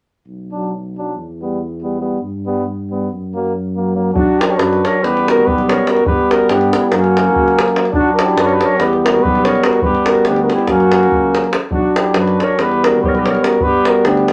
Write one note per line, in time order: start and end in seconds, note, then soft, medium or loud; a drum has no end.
0.26 1.14 B1 soft
0.52 0.72 F#3 soft
0.52 0.71 D4 soft
0.97 1.16 F#3 soft
0.97 1.16 D4 soft
1.16 2.18 E2 medium
1.41 1.60 G3 soft
1.41 1.61 B3 soft
1.82 1.99 G3 soft
1.82 2.01 B3 soft
2.00 2.19 G3 soft
2.00 2.20 B3 soft
2.21 3.08 G2 medium
2.45 2.65 G3 medium
2.45 2.65 B3 soft
2.89 3.09 G3 soft
2.89 3.10 B3 soft
3.12 4.12 F#2 medium
3.34 3.54 F#3 medium
3.34 3.53 A#3 medium
3.76 3.95 F#3 medium
3.76 3.94 A#3 soft
3.95 4.13 F#3 soft
3.95 4.13 A#3 medium
4.13 4.28 B1 medium
4.13 5.04 F#3 medium
4.13 5.04 D4 medium
4.13 4.41 F#4 medium
4.13 davul low medium
4.19 4.43 D4 medium
4.39 4.48 E4 medium
4.39 4.44 G4 medium
4.39 4.51 A#4 medium
4.39 davul high medium
4.47 4.52 F#4 soft
4.47 4.52 G4 medium
4.51 4.60 A#4 medium
4.51 4.60 C#5 medium
4.58 4.82 F#2 medium
4.58 4.87 F#4 medium
4.58 4.86 B4 medium
4.58 davul high medium
4.73 davul high soft
4.85 5.05 A#4 medium
4.85 5.05 C#5 medium
4.85 davul high soft
5.02 5.47 E2 medium
5.02 6.03 G3 medium
5.02 6.04 B3 medium
5.02 5.30 G4 medium
5.02 5.31 B4 loud
5.02 davul high soft
5.17 davul high soft
5.28 5.48 F#4 medium
5.28 5.47 A#4 medium
5.28 davul high medium
5.45 5.78 B1 medium
5.45 5.74 G4 medium
5.45 5.71 B4 medium
5.45 davul low medium
5.58 davul high soft
5.69 5.90 A#4 medium
5.69 5.91 C#5 medium
5.69 davul high medium
5.87 6.05 F#4 medium
5.87 6.06 A#4 medium
5.87 davul high medium
5.97 davul high soft
6.04 6.18 G2 medium
6.04 6.93 G3 medium
6.04 6.91 B3 medium
6.04 6.35 G4 medium
6.04 6.33 B4 medium
6.04 davul low medium
6.31 6.55 F#4 medium
6.31 6.52 A#4 medium
6.31 davul high medium
6.49 6.72 G2 medium
6.49 6.74 G4 medium
6.49 davul high medium
6.53 6.75 D4 medium
6.61 davul high soft
6.73 6.85 G4 medium
6.73 davul high medium
6.78 6.89 E4 medium
6.85 6.98 E4 soft
6.85 6.96 G4 medium
6.89 7.37 F#2 medium
6.89 7.92 F#3 medium
6.89 7.92 A#3 medium
6.89 davul high medium
6.94 7.78 C#4 medium
6.94 7.77 F#4 medium
7.04 davul high soft
7.17 davul high medium
7.35 7.67 C#2 medium
7.35 davul low medium
7.48 davul high soft
7.59 davul high medium
7.68 davul high soft
7.76 davul high medium
7.85 davul high soft
7.92 8.06 B1 medium
7.92 8.80 F#3 medium
7.92 8.80 D4 medium
7.92 8.11 D4 medium
7.92 davul low medium
7.96 8.12 F#4 medium
8.11 8.25 F#4 medium
8.11 8.24 A#4 medium
8.19 davul high medium
8.23 8.41 E4 medium
8.23 8.42 G4 medium
8.36 8.60 F#2 medium
8.36 8.48 F#4 medium
8.36 davul high medium
8.40 8.45 B4 loud
8.40 8.54 C#5 medium
8.46 8.54 A#4 medium
8.46 davul high soft
8.52 8.67 G4 medium
8.52 8.65 B4 medium
8.61 8.82 C#5 medium
8.61 davul high soft
8.65 8.85 A#4 medium
8.78 9.25 E2 medium
8.78 9.81 G3 medium
8.78 9.81 B3 medium
8.78 8.96 B4 medium
8.78 davul high medium
8.83 8.99 G4 medium
8.93 9.06 B4 medium
8.93 davul high soft
8.99 9.07 G4 soft
9.04 9.25 F#4 medium
9.04 9.24 A#4 medium
9.04 davul high medium
9.22 9.55 B1 medium
9.22 9.50 G4 medium
9.22 9.46 B4 medium
9.22 davul low medium
9.35 davul high soft
9.45 9.68 A#4 medium
9.45 9.67 C#5 medium
9.45 davul high medium
9.55 davul high soft
9.63 9.83 F#4 medium
9.63 9.82 A#4 medium
9.63 davul high medium
9.73 davul high soft
9.81 9.95 G2 medium
9.81 10.70 G3 medium
9.81 10.71 B3 medium
9.81 10.12 G4 medium
9.81 10.09 B4 medium
9.81 davul low medium
9.95 davul high soft
10.06 10.26 A#4 medium
10.06 davul high medium
10.11 10.27 F#4 medium
10.15 davul high soft
10.25 10.50 D2 medium
10.25 10.42 D4 medium
10.25 10.42 G4 medium
10.25 davul high medium
10.36 davul high soft
10.42 10.55 F#4 medium
10.42 10.54 A#4 medium
10.50 10.70 E4 medium
10.50 10.69 G4 medium
10.50 davul high soft
10.59 davul high soft
10.67 11.14 F#2 medium
10.67 11.56 F#3 medium
10.67 11.56 A#3 medium
10.67 11.49 C#4 medium
10.67 11.49 F#4 medium
10.67 davul high soft
10.67 davul low soft
10.80 davul high soft
10.92 davul high medium
11.03 davul high soft
11.12 11.45 C#2 medium
11.12 davul low medium
11.35 davul high medium
11.44 davul high soft
11.53 davul high medium
11.71 11.84 B1 medium
11.71 12.60 F#3 medium
11.71 12.60 D4 soft
11.71 11.99 D4 medium
11.71 11.98 F#4 medium
11.71 davul low medium
11.96 12.18 E4 medium
11.96 12.20 G4 medium
11.96 davul high medium
12.14 12.39 F#2 medium
12.14 12.45 F#4 medium
12.14 davul high medium
12.19 12.45 B4 medium
12.28 davul high soft
12.40 12.65 A#4 medium
12.40 12.62 C#5 medium
12.40 davul high medium
12.58 13.05 E2 medium
12.58 13.59 G3 medium
12.58 13.60 B3 medium
12.58 12.87 B4 medium
12.58 davul high soft
12.64 12.90 G4 medium
12.72 davul high soft
12.84 13.04 F#4 medium
12.84 13.01 A#4 medium
12.84 davul high medium
13.02 13.35 B1 medium
13.02 13.10 G4 medium
13.02 13.08 B4 medium
13.02 davul low medium
13.06 13.21 A#4 medium
13.06 13.16 C#5 medium
13.14 13.27 B4 medium
13.14 davul high soft
13.19 13.32 G4 medium
13.26 13.45 C#5 medium
13.26 davul high soft
13.30 13.50 A#4 medium
13.35 davul high soft
13.43 13.64 A#4 medium
13.43 davul high medium
13.48 13.67 F#4 medium
13.53 davul high soft
13.60 13.74 G2 medium
13.60 14.33 G3 medium
13.60 14.33 B3 medium
13.60 13.90 B4 loud
13.60 davul low medium
13.65 13.90 G4 medium
13.85 14.07 F#4 medium
13.85 14.08 A#4 medium
13.85 davul high medium
14.04 14.27 D2 medium
14.04 14.29 D4 medium
14.04 14.29 G4 medium
14.04 davul high medium
14.17 davul high soft
14.28 14.33 E4 medium
14.28 davul high medium